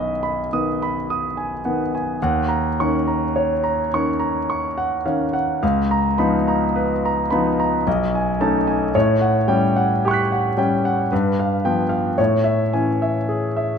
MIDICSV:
0, 0, Header, 1, 2, 480
1, 0, Start_track
1, 0, Tempo, 1142857
1, 915, Time_signature, 3, 2, 24, 8
1, 2361, Tempo, 1121495
1, 3321, Tempo, 1086957
1, 5934, End_track
2, 0, Start_track
2, 0, Title_t, "Grand piano"
2, 0, Program_c, 0, 0
2, 0, Control_c, 0, 64, 127
2, 0, Note_on_c, 0, 35, 49
2, 0, Note_on_c, 0, 51, 38
2, 0, Note_on_c, 0, 59, 38
2, 0, Note_on_c, 0, 75, 44
2, 0, Note_on_c, 0, 80, 43
2, 0, Note_on_c, 0, 83, 43
2, 0, Note_on_c, 0, 87, 46
2, 43, Note_off_c, 0, 83, 0
2, 96, Note_on_c, 0, 83, 43
2, 161, Note_off_c, 0, 75, 0
2, 193, Note_off_c, 0, 51, 0
2, 195, Note_off_c, 0, 59, 0
2, 221, Note_on_c, 0, 51, 35
2, 222, Note_on_c, 0, 59, 34
2, 223, Note_off_c, 0, 87, 0
2, 223, Note_on_c, 0, 87, 42
2, 278, Note_off_c, 0, 83, 0
2, 346, Note_on_c, 0, 83, 47
2, 401, Note_off_c, 0, 87, 0
2, 463, Note_on_c, 0, 87, 43
2, 521, Note_off_c, 0, 83, 0
2, 577, Note_off_c, 0, 80, 0
2, 577, Note_on_c, 0, 80, 40
2, 639, Note_off_c, 0, 87, 0
2, 667, Note_off_c, 0, 51, 0
2, 668, Note_off_c, 0, 59, 0
2, 693, Note_on_c, 0, 78, 36
2, 696, Note_on_c, 0, 59, 36
2, 697, Note_on_c, 0, 51, 36
2, 756, Note_off_c, 0, 80, 0
2, 803, Note_off_c, 0, 78, 0
2, 817, Note_on_c, 0, 80, 43
2, 910, Note_off_c, 0, 51, 0
2, 910, Note_off_c, 0, 59, 0
2, 922, Control_c, 0, 64, 0
2, 925, Note_off_c, 0, 35, 0
2, 927, Note_off_c, 0, 80, 0
2, 934, Note_on_c, 0, 39, 57
2, 934, Note_on_c, 0, 78, 48
2, 1011, Control_c, 0, 64, 127
2, 1044, Note_on_c, 0, 82, 46
2, 1120, Note_off_c, 0, 78, 0
2, 1162, Note_off_c, 0, 39, 0
2, 1175, Note_on_c, 0, 61, 38
2, 1176, Note_on_c, 0, 85, 47
2, 1178, Note_on_c, 0, 51, 41
2, 1236, Note_off_c, 0, 82, 0
2, 1291, Note_on_c, 0, 82, 42
2, 1361, Note_off_c, 0, 85, 0
2, 1410, Note_on_c, 0, 73, 46
2, 1477, Note_off_c, 0, 82, 0
2, 1527, Note_on_c, 0, 82, 44
2, 1596, Note_off_c, 0, 73, 0
2, 1630, Note_off_c, 0, 61, 0
2, 1632, Note_off_c, 0, 51, 0
2, 1653, Note_on_c, 0, 51, 42
2, 1655, Note_on_c, 0, 85, 50
2, 1659, Note_on_c, 0, 61, 40
2, 1714, Note_off_c, 0, 82, 0
2, 1762, Note_on_c, 0, 82, 49
2, 1839, Note_off_c, 0, 85, 0
2, 1889, Note_on_c, 0, 85, 47
2, 1953, Note_off_c, 0, 82, 0
2, 2006, Note_on_c, 0, 78, 47
2, 2077, Note_off_c, 0, 85, 0
2, 2111, Note_off_c, 0, 51, 0
2, 2114, Note_off_c, 0, 61, 0
2, 2123, Note_on_c, 0, 51, 42
2, 2124, Note_on_c, 0, 77, 42
2, 2127, Note_on_c, 0, 61, 43
2, 2196, Note_off_c, 0, 78, 0
2, 2240, Note_on_c, 0, 78, 46
2, 2242, Note_off_c, 0, 77, 0
2, 2344, Note_off_c, 0, 51, 0
2, 2346, Note_off_c, 0, 61, 0
2, 2359, Note_off_c, 0, 78, 0
2, 2363, Note_on_c, 0, 77, 54
2, 2364, Note_on_c, 0, 37, 62
2, 2367, Control_c, 0, 64, 0
2, 2436, Control_c, 0, 64, 127
2, 2485, Note_on_c, 0, 82, 49
2, 2554, Note_off_c, 0, 77, 0
2, 2596, Note_off_c, 0, 37, 0
2, 2601, Note_on_c, 0, 83, 52
2, 2602, Note_on_c, 0, 53, 48
2, 2604, Note_on_c, 0, 63, 47
2, 2606, Note_on_c, 0, 59, 44
2, 2675, Note_off_c, 0, 82, 0
2, 2727, Note_on_c, 0, 82, 51
2, 2794, Note_off_c, 0, 83, 0
2, 2847, Note_on_c, 0, 71, 49
2, 2918, Note_off_c, 0, 82, 0
2, 2974, Note_on_c, 0, 82, 50
2, 3038, Note_off_c, 0, 71, 0
2, 3067, Note_off_c, 0, 53, 0
2, 3068, Note_off_c, 0, 63, 0
2, 3069, Note_off_c, 0, 59, 0
2, 3081, Note_on_c, 0, 83, 53
2, 3087, Note_on_c, 0, 59, 46
2, 3089, Note_on_c, 0, 53, 43
2, 3091, Note_on_c, 0, 63, 45
2, 3160, Note_off_c, 0, 82, 0
2, 3206, Note_on_c, 0, 82, 52
2, 3272, Note_off_c, 0, 83, 0
2, 3305, Note_off_c, 0, 53, 0
2, 3305, Note_off_c, 0, 59, 0
2, 3306, Note_off_c, 0, 63, 0
2, 3322, Note_off_c, 0, 82, 0
2, 3323, Note_on_c, 0, 35, 58
2, 3323, Note_on_c, 0, 75, 49
2, 3327, Control_c, 0, 64, 0
2, 3387, Control_c, 0, 64, 127
2, 3448, Note_on_c, 0, 80, 52
2, 3514, Note_off_c, 0, 75, 0
2, 3554, Note_off_c, 0, 35, 0
2, 3559, Note_on_c, 0, 57, 45
2, 3560, Note_on_c, 0, 61, 43
2, 3561, Note_on_c, 0, 81, 57
2, 3564, Note_on_c, 0, 63, 46
2, 3635, Note_off_c, 0, 80, 0
2, 3679, Note_on_c, 0, 80, 49
2, 3751, Note_off_c, 0, 81, 0
2, 3780, Note_off_c, 0, 57, 0
2, 3780, Note_off_c, 0, 61, 0
2, 3782, Note_off_c, 0, 63, 0
2, 3798, Note_off_c, 0, 80, 0
2, 3800, Note_on_c, 0, 45, 61
2, 3800, Note_on_c, 0, 73, 57
2, 3807, Control_c, 0, 64, 0
2, 3884, Control_c, 0, 64, 127
2, 3916, Note_on_c, 0, 78, 50
2, 3989, Note_off_c, 0, 73, 0
2, 4029, Note_off_c, 0, 45, 0
2, 4034, Note_on_c, 0, 55, 49
2, 4034, Note_on_c, 0, 79, 55
2, 4035, Note_on_c, 0, 61, 43
2, 4106, Note_off_c, 0, 78, 0
2, 4160, Note_on_c, 0, 78, 49
2, 4226, Note_off_c, 0, 79, 0
2, 4286, Note_on_c, 0, 67, 49
2, 4289, Note_on_c, 0, 79, 43
2, 4299, Note_on_c, 0, 85, 42
2, 4313, Note_on_c, 0, 90, 44
2, 4324, Note_on_c, 0, 95, 41
2, 4349, Note_off_c, 0, 78, 0
2, 4406, Note_on_c, 0, 78, 50
2, 4473, Note_off_c, 0, 67, 0
2, 4497, Note_off_c, 0, 55, 0
2, 4498, Note_off_c, 0, 61, 0
2, 4514, Note_off_c, 0, 79, 0
2, 4517, Note_on_c, 0, 55, 41
2, 4520, Note_on_c, 0, 61, 44
2, 4521, Note_on_c, 0, 79, 49
2, 4593, Note_off_c, 0, 78, 0
2, 4640, Note_on_c, 0, 78, 54
2, 4709, Note_off_c, 0, 79, 0
2, 4737, Note_off_c, 0, 55, 0
2, 4738, Note_off_c, 0, 61, 0
2, 4748, Note_off_c, 0, 85, 0
2, 4755, Note_off_c, 0, 90, 0
2, 4756, Note_off_c, 0, 78, 0
2, 4758, Note_on_c, 0, 71, 47
2, 4761, Note_off_c, 0, 95, 0
2, 4761, Control_c, 0, 64, 0
2, 4762, Note_on_c, 0, 43, 55
2, 4839, Control_c, 0, 64, 127
2, 4880, Note_on_c, 0, 77, 49
2, 4945, Note_off_c, 0, 71, 0
2, 4987, Note_off_c, 0, 43, 0
2, 4991, Note_on_c, 0, 53, 41
2, 4993, Note_on_c, 0, 79, 50
2, 4995, Note_on_c, 0, 59, 39
2, 5066, Note_off_c, 0, 77, 0
2, 5100, Note_on_c, 0, 77, 46
2, 5183, Note_off_c, 0, 79, 0
2, 5212, Note_off_c, 0, 53, 0
2, 5214, Note_off_c, 0, 59, 0
2, 5225, Note_off_c, 0, 77, 0
2, 5226, Note_on_c, 0, 73, 53
2, 5228, Note_on_c, 0, 45, 56
2, 5237, Control_c, 0, 64, 0
2, 5299, Control_c, 0, 64, 127
2, 5342, Note_on_c, 0, 76, 45
2, 5420, Note_off_c, 0, 73, 0
2, 5462, Note_off_c, 0, 45, 0
2, 5471, Note_on_c, 0, 80, 45
2, 5473, Note_on_c, 0, 52, 41
2, 5474, Note_on_c, 0, 61, 42
2, 5538, Note_off_c, 0, 76, 0
2, 5598, Note_on_c, 0, 76, 42
2, 5664, Note_off_c, 0, 80, 0
2, 5716, Note_on_c, 0, 68, 42
2, 5789, Note_off_c, 0, 76, 0
2, 5839, Note_on_c, 0, 76, 42
2, 5911, Note_off_c, 0, 68, 0
2, 5934, Note_off_c, 0, 52, 0
2, 5934, Note_off_c, 0, 61, 0
2, 5934, Note_off_c, 0, 76, 0
2, 5934, End_track
0, 0, End_of_file